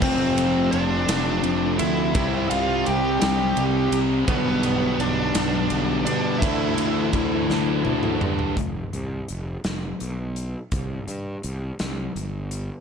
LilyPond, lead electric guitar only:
\new Staff \with { instrumentName = "Lead electric guitar" } { \time 6/8 \key f \lydian \tempo 4. = 56 <c' c''>4 <d' d''>4. <e' e''>8~ | <e' e''>8 <f' f''>8 <g' g''>8 <g' g''>4 r8 | <b b'>4 <d' d''>4. <d' d''>8 | <e' e''>2~ <e' e''>8 r8 |
r2. | r2. | }